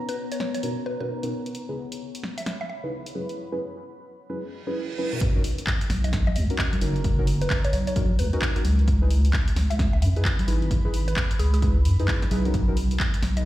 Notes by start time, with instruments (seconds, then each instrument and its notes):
Already playing: ambient pad B3 C#5 F#5 A#5
0.09 synth pluck B4, closed hi-hat
0.32 synth pluck C#5, closed hi-hat
0.40 synth pluck C#5, snare
0.54 synth pluck C#5, closed hi-hat
0.63 synth stab B2 C#4 D#4 F#4 A#4, closed hi-hat
0.86 synth pluck B4
1.00 synth stab B2 C#4 D#4 F#4 A#4, synth pluck B4
1.23 synth stab B2 C#4 D#4 F#4 A#4, closed hi-hat
1.46 closed hi-hat
1.55 closed hi-hat
1.69 synth stab C#3 D#4 E4 G#4 B4
1.92 closed hi-hat
2.15 closed hi-hat
2.23 ambient pad B5, snare
2.38 synth pluck E5, closed hi-hat
2.46 snare, closed hi-hat
2.61 synth pluck E5
2.69 synth pluck E5
2.84 synth stab C#3 D#4 E4 G#4 B4
3.06 closed hi-hat
3.15 synth stab F#3 C#4 E4 G#4 B4
3.29 closed hi-hat
3.52 synth stab F#3 C#4 E4 G#4 B4
4.30 synth stab F#3 C#4 E4 G#4 B4, reverse cymbal
4.67 synth stab F#3 C#4 E4 G#4 B4
4.98 synth stab F#3 C#4 E4 G#4 B4
5.13 synth stab B2 C#4 D#4 F#4 A#4
5.21 kick, closed hi-hat, impact
5.35 synth stab C#4 D#4 F#4 A#4
5.44 open hi-hat
5.58 closed hi-hat
5.67 kick, clap
5.81 closed hi-hat
5.90 wobble bass B1, snare, open hi-hat
6.04 synth pluck D#5, closed hi-hat
6.13 kick, snare, closed hi-hat
6.27 synth pluck D#5
6.36 wobble bass D#2, synth pluck D#5, ambient pad A#5, open hi-hat
6.50 synth stab C#4 D#4 F#4 A#4, closed hi-hat
6.59 kick, clap
6.73 closed hi-hat, high conga
6.81 wobble bass F#1, synth stab C#4 D#4 F#4 A#4, open hi-hat
6.96 closed hi-hat
7.04 kick, closed hi-hat
7.19 synth stab C#4 D#4 F#4 A#4
7.27 open hi-hat
7.41 synth pluck B4, closed hi-hat
7.50 kick, clap
7.64 synth pluck C#5, closed hi-hat
7.73 wobble bass B1, synth pluck C#5, open hi-hat
7.87 synth pluck C#5, closed hi-hat
7.96 synth stab C#4 D#4 F#4 A#4, kick, closed hi-hat
8.19 wobble bass D#2, synth pluck B4, open hi-hat
8.33 synth stab C#4 D#4 F#4 A#4, synth pluck B4, closed hi-hat
8.42 kick, clap
8.56 synth stab C#4 D#4 F#4 A#4, closed hi-hat
8.65 wobble bass C#2, open hi-hat, high conga
8.79 closed hi-hat
8.88 kick, closed hi-hat
9.02 synth stab D#4 E4 G#4 B4
9.10 open hi-hat
9.25 closed hi-hat
9.33 kick, clap
9.48 ambient pad B5, closed hi-hat
9.56 wobble bass C#2, snare, open hi-hat
9.70 synth pluck E5, closed hi-hat
9.79 kick, snare, closed hi-hat
9.93 synth pluck E5
10.02 wobble bass F#2, synth pluck E5, open hi-hat
10.16 synth stab D#4 E4 G#4 B4, closed hi-hat
10.25 kick, clap
10.39 closed hi-hat, high conga
10.48 wobble bass G#1, synth stab D#4 E4 G#4 B4, open hi-hat
10.62 closed hi-hat
10.71 kick, closed hi-hat
10.85 synth stab D#4 E4 G#4 B4
10.94 open hi-hat
11.08 synth pluck B4, closed hi-hat
11.17 kick, clap
11.31 closed hi-hat
11.39 wobble bass C#2, synth pluck G#4, open hi-hat
11.54 synth pluck G#4, closed hi-hat
11.62 synth stab D#4 E4 G#4 B4, kick, closed hi-hat
11.85 wobble bass F#2, open hi-hat
11.99 synth stab D#4 E4 G#4 B4, closed hi-hat
12.08 kick, clap
12.22 snare, closed hi-hat
12.31 wobble bass B1, synth stab D#4 E4 G#4 B4, open hi-hat, high conga
12.45 synth stab C#4 D#4 F#4 A#4, closed hi-hat
12.54 kick, closed hi-hat
12.68 synth stab C#4 D#4 F#4 A#4
12.77 open hi-hat
12.91 closed hi-hat
13.00 kick, clap
13.11 ambient pad A#5, closed hi-hat
13.23 wobble bass B1, snare, open hi-hat
13.37 synth pluck D#5, closed hi-hat